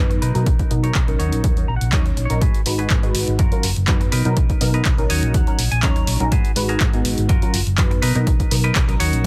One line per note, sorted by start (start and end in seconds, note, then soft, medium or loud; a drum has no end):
0.00 0.17 F#2 medium
0.00 0.32 F#3 medium
0.00 0.32 B3 medium
0.00 0.32 D#4 medium
0.00 0.32 B4 loud
0.10 muted clean electric guitar stroke medium
0.10 closed hi-hat soft
0.22 0.32 B2 medium
0.22 0.71 D#4 medium
0.22 0.71 A#4 medium
0.22 0.71 B4 medium
0.22 closed hi-hat medium
0.22 maracas medium
0.34 0.44 B2 loud
0.34 0.48 F#3 loud
0.34 0.48 B3 medium
0.34 0.48 D#4 medium
0.34 0.48 A#4 loud
0.34 closed hi-hat soft
0.34 maracas soft
0.46 0.56 B1 medium
0.46 kick loud
0.46 closed hi-hat medium
0.59 kick medium
0.59 closed hi-hat soft
0.59 maracas soft
0.70 0.90 B2 medium
0.70 0.93 F#3 medium
0.70 0.93 B3 medium
0.70 0.93 D#4 medium
0.70 0.93 A#4 medium
0.70 closed hi-hat medium
0.70 maracas loud
0.83 1.14 D#4 medium
0.83 1.14 A#4 medium
0.83 1.14 C#5 medium
0.83 closed hi-hat soft
0.95 1.14 B1 medium
0.95 kick loud
0.95 clap loud
0.95 closed hi-hat medium
1.08 1.54 F#3 medium
1.08 1.54 C#4 medium
1.08 1.54 D#4 medium
1.08 1.54 A#4 loud
1.08 closed hi-hat soft
1.19 1.29 D#2 medium
1.19 1.88 D#4 medium
1.19 1.88 F#4 medium
1.19 1.68 C#5 medium
1.19 closed hi-hat medium
1.19 maracas medium
1.32 1.41 A#1 medium
1.32 closed hi-hat soft
1.32 maracas soft
1.44 kick loud
1.44 closed hi-hat medium
1.56 1.70 F#3 medium
1.56 1.70 C#4 medium
1.56 1.70 D#4 medium
1.56 1.70 A#4 medium
1.56 closed hi-hat soft
1.56 maracas soft
1.68 1.78 A#1 medium
1.68 1.76 A#5 medium
1.68 maracas medium
1.76 1.92 F#5 medium
1.81 1.93 A#1 medium
1.81 closed hi-hat soft
1.81 maracas soft
1.92 2.12 D#2 medium
1.92 2.27 F#3 medium
1.92 2.27 C#4 medium
1.92 2.27 D#4 medium
1.92 2.27 C#5 loud
1.92 2.05 D#5 medium
1.92 kick loud
1.92 clap loud
1.92 closed hi-hat medium
2.06 muted clean electric guitar stroke medium
2.06 closed hi-hat soft
2.17 2.27 A#1 medium
2.17 muted clean electric guitar stroke soft
2.17 closed hi-hat medium
2.17 maracas medium
2.25 2.41 C#5 medium
2.30 2.39 A#1 medium
2.30 2.40 F#3 loud
2.30 2.40 C#4 medium
2.30 2.40 D#4 medium
2.30 2.40 A#4 loud
2.30 closed hi-hat soft
2.30 maracas soft
2.41 2.60 F#4 loud
2.41 2.60 G#4 medium
2.41 2.60 B4 loud
2.41 kick loud
2.41 closed hi-hat medium
2.54 closed hi-hat soft
2.66 2.85 G#1 medium
2.66 2.88 G#3 medium
2.66 2.88 D#4 medium
2.66 2.88 F#4 medium
2.66 2.88 B4 medium
2.66 open hi-hat loud
2.66 maracas medium
2.79 3.09 F#4 medium
2.79 3.09 G#4 medium
2.79 3.09 B4 medium
2.79 closed hi-hat soft
2.90 3.09 G#2 medium
2.90 kick loud
2.90 clap loud
2.90 closed hi-hat medium
3.03 3.38 G#3 medium
3.03 3.38 D#4 medium
3.03 3.38 F#4 medium
3.03 3.38 B4 loud
3.03 closed hi-hat soft
3.15 3.25 G#1 medium
3.15 open hi-hat loud
3.15 maracas medium
3.27 3.36 G#1 medium
3.27 closed hi-hat soft
3.27 maracas soft
3.39 3.49 F#2 medium
3.39 3.70 F4 medium
3.39 3.70 F#4 medium
3.39 3.70 A#4 medium
3.39 kick loud
3.39 closed hi-hat medium
3.52 3.65 F#3 medium
3.52 3.65 C#4 medium
3.52 3.65 F4 medium
3.52 3.65 A#4 medium
3.52 muted fingered electric bass stroke soft
3.52 closed hi-hat soft
3.52 maracas soft
3.63 3.73 F#1 medium
3.63 open hi-hat loud
3.63 maracas loud
3.76 3.85 F#1 medium
3.76 closed hi-hat soft
3.76 maracas soft
3.87 4.22 F#3 medium
3.87 4.22 B3 medium
3.87 4.22 D#4 medium
3.87 4.22 B4 loud
3.87 kick loud
3.87 clap loud
3.87 closed hi-hat medium
4.00 muted clean electric guitar stroke medium
4.00 closed hi-hat soft
4.11 4.22 B2 medium
4.11 4.61 D#4 medium
4.11 4.61 A#4 medium
4.11 4.61 B4 loud
4.11 open hi-hat loud
4.11 maracas medium
4.25 4.34 B2 loud
4.25 4.38 F#3 loud
4.25 4.38 B3 medium
4.25 4.38 D#4 medium
4.25 4.39 A#4 loud
4.25 closed hi-hat soft
4.25 maracas soft
4.37 4.47 B1 medium
4.37 kick loud
4.37 closed hi-hat medium
4.37 maracas soft
4.50 kick medium
4.50 closed hi-hat soft
4.50 maracas soft
4.61 4.80 B2 medium
4.61 4.83 F#3 medium
4.61 4.83 B3 medium
4.61 4.83 D#4 medium
4.61 4.83 A#4 medium
4.61 open hi-hat medium
4.61 maracas medium
4.74 5.04 D#4 medium
4.74 5.04 A#4 medium
4.74 5.04 B4 medium
4.74 closed hi-hat soft
4.85 5.04 B1 medium
4.85 kick loud
4.85 clap loud
4.85 closed hi-hat medium
4.98 5.44 F#3 medium
4.98 5.44 C#4 medium
4.98 5.44 D#4 medium
4.98 5.44 A#4 loud
4.98 closed hi-hat soft
4.98 maracas soft
5.09 5.20 D#2 medium
5.09 5.79 D#4 medium
5.09 5.79 F#4 medium
5.09 5.79 C#5 medium
5.09 5.33 D#5 medium
5.09 open hi-hat loud
5.09 maracas medium
5.22 5.31 A#1 medium
5.22 closed hi-hat soft
5.22 maracas soft
5.34 5.44 D#2 medium
5.34 5.69 F#5 medium
5.34 kick loud
5.34 closed hi-hat medium
5.34 maracas soft
5.47 5.60 F#3 medium
5.47 5.60 C#4 medium
5.47 5.60 D#4 medium
5.47 5.61 A#4 medium
5.47 muted fingered electric bass stroke soft
5.47 closed hi-hat soft
5.47 maracas soft
5.58 5.68 A#1 medium
5.58 open hi-hat loud
5.58 maracas medium
5.71 5.80 A#1 medium
5.71 5.82 G#5 medium
5.71 closed hi-hat soft
5.71 maracas soft
5.83 6.17 F#3 medium
5.83 6.17 C#4 medium
5.83 6.17 D#4 medium
5.83 6.17 C#5 loud
5.83 6.28 A#5 medium
5.83 kick loud
5.83 clap loud
5.83 closed hi-hat medium
5.96 muted clean electric guitar stroke medium
5.96 closed hi-hat soft
6.07 6.17 A#1 loud
6.07 muted clean electric guitar stroke soft
6.07 open hi-hat medium
6.07 maracas medium
6.19 6.29 A#1 loud
6.19 6.30 F#3 loud
6.19 6.30 C#4 medium
6.19 6.31 D#4 medium
6.19 6.31 A#4 loud
6.19 closed hi-hat soft
6.19 maracas soft
6.32 6.42 G#2 medium
6.32 6.51 F#4 loud
6.32 6.51 G#4 loud
6.32 6.51 B4 loud
6.32 kick loud
6.32 closed hi-hat medium
6.32 maracas soft
6.44 closed hi-hat soft
6.44 maracas soft
6.55 6.75 G#1 medium
6.55 6.78 G#3 medium
6.55 6.78 D#4 medium
6.55 6.78 F#4 medium
6.55 6.79 B4 loud
6.55 open hi-hat loud
6.55 maracas medium
6.69 6.99 F#4 medium
6.69 6.99 G#4 medium
6.69 6.99 A#4 medium
6.69 closed hi-hat soft
6.69 maracas soft
6.80 6.99 G#2 medium
6.80 kick loud
6.80 clap loud
6.80 closed hi-hat medium
6.93 7.28 G#3 medium
6.93 7.28 B3 loud
6.93 7.28 D#4 medium
6.93 7.28 F#4 medium
6.93 closed hi-hat soft
6.93 maracas soft
7.05 7.15 G#1 loud
7.05 open hi-hat loud
7.05 maracas medium
7.18 7.27 G#1 medium
7.18 closed hi-hat soft
7.18 maracas soft
7.29 7.60 F4 medium
7.29 7.60 F#4 medium
7.29 7.60 A#4 medium
7.29 kick loud
7.29 closed hi-hat medium
7.29 maracas medium
7.42 7.55 F#3 medium
7.42 7.55 C#4 medium
7.42 7.56 F4 medium
7.42 7.56 A#4 medium
7.42 muted fingered electric bass stroke soft
7.42 closed hi-hat soft
7.42 maracas soft
7.54 7.63 F#1 loud
7.54 open hi-hat loud
7.54 maracas medium
7.66 7.75 F#1 loud
7.66 closed hi-hat soft
7.66 maracas soft
7.78 7.97 F#2 medium
7.78 8.12 F#3 loud
7.78 8.12 B3 medium
7.78 8.12 D#4 medium
7.78 8.13 B4 loud
7.78 kick loud
7.78 clap loud
7.78 closed hi-hat medium
7.91 muted clean electric guitar stroke medium
7.91 closed hi-hat soft
8.02 8.12 B2 loud
8.02 8.51 D#4 medium
8.02 8.51 A#4 medium
8.02 8.51 B4 loud
8.02 open hi-hat loud
8.02 maracas medium
8.15 8.24 B2 loud
8.15 8.28 F#3 loud
8.15 8.29 B3 medium
8.15 8.29 D#4 medium
8.15 8.29 A#4 loud
8.15 closed hi-hat soft
8.15 maracas soft
8.27 8.37 B1 medium
8.27 kick loud
8.27 closed hi-hat medium
8.27 maracas medium
8.40 kick medium
8.40 closed hi-hat soft
8.40 maracas soft
8.51 8.70 B2 medium
8.51 8.73 F#3 medium
8.51 8.73 B3 medium
8.51 8.74 D#4 medium
8.51 8.74 A#4 medium
8.51 open hi-hat loud
8.51 maracas medium
8.64 8.94 D#4 medium
8.64 8.94 A#4 medium
8.64 8.94 B4 loud
8.64 closed hi-hat soft
8.64 maracas soft
8.75 8.95 B1 medium
8.75 kick loud
8.75 clap loud
8.75 closed hi-hat medium
8.88 9.27 F#3 medium
8.88 9.27 C#4 medium
8.88 9.27 D#4 medium
8.88 9.27 A#4 loud
8.88 closed hi-hat soft
8.88 maracas soft
9.00 9.10 D#2 loud
9.00 9.27 D#4 medium
9.00 9.27 F#4 medium
9.00 9.27 C#5 loud
9.00 open hi-hat loud
9.00 maracas medium
9.13 9.22 A#1 medium
9.13 closed hi-hat soft
9.13 maracas soft